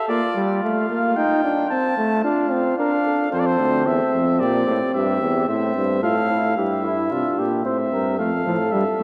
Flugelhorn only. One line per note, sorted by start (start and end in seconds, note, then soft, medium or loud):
0.00 0.11 A4 medium
0.10 2.24 F4 medium
2.25 2.77 F4 medium
2.79 2.91 A#4 medium
3.05 3.32 A4 medium
3.33 4.11 A4 medium
4.41 4.91 G4 medium
4.95 5.48 G4 medium
5.49 6.02 C5 medium
6.03 6.56 A4 medium
6.57 6.86 G4 medium
6.85 7.13 E4 medium
7.11 7.40 F4 medium
7.39 7.65 G4 medium
7.65 7.77 C5 medium
7.92 8.17 A#4 medium
8.18 9.03 A4 medium